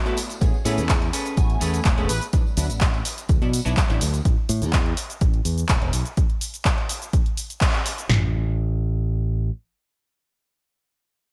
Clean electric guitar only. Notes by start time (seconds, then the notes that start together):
Already playing: D5
0.06 E4 F#4 A4 B4
0.30 muted clean electric guitar stroke
0.65 C#4 G#4 A4 B4
1.13 C#4 G#4 A4 B4
1.61 C#4 G#4 A4 B4
1.97 C#4 G#4 A4 B4
2.21 muted clean electric guitar stroke